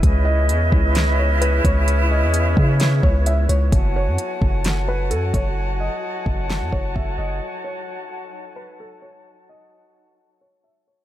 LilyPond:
<<
  \new Staff \with { instrumentName = "Felt piano" } { \time 4/4 \key fis \dorian \tempo 4 = 130 r8 dis''2 cis''8 b'8 cis''8 | r8 dis''2 cis''8 e''8 cis''8 | r8 cis''2 b'8 a'8 cis''8 | r8 dis''2 cis''8 e''8 dis''8 |
r8 cis''2 b'8 a'8 cis''8 | r8 dis''2 cis''8 e''8 cis''8 | }
  \new Staff \with { instrumentName = "Flute section" } { \time 4/4 \key fis \dorian << { dis''1 | cis''1 | gis''1~ | gis''1~ |
gis''1~ | gis''1 | } \\ { <cis' e' gis' b'>1~ | <cis' e' gis' b'>1 | <fis' cis'' fis'' a''>1~ | <fis' cis'' fis'' a''>1~ |
<fis' cis'' fis'' a''>1~ | <fis' cis'' fis'' a''>1 | } >> }
  \new Staff \with { instrumentName = "Synth texture" } { \time 4/4 \key fis \dorian << { <b cis''>1~ | <b cis''>1 | <fis a'>1~ | <fis a'>1~ |
<fis a'>1~ | <fis a'>1 | } \\ { e'1~ | e'1 | e'1~ | e'1 |
dis'1~ | dis'1 | } >> }
  \new Staff \with { instrumentName = "808-style bass" } { \clef bass \time 4/4 \key fis \dorian cis,4 e,8 cis,2 cis,8~ | cis,8. e,8. cis4 cis,4 cis,8 | fis,,8. fis,16 r8 fis,,4. fis,8 fis,,8~ | fis,,8. r8. fis,,8. fis,16 fis,,8 fis,,8 fis,,8 |
r1 | r1 | }
  \new DrumStaff \with { instrumentName = "Drums" } \drummode { \time 4/4 <hh bd>4 hh8 bd8 <hh sn>4 hh8 <hh bd>8 | hh4 hh8 bd8 <hh sn>8 bd8 hh8 hh8 | <hh bd>4 hh8 bd8 <hh sn>4 hh8 <hh bd>8 | r4 r8 bd8 sn8 bd8 bd4 |
r4 r4 r4 r4 | r4 r4 r4 r4 | }
>>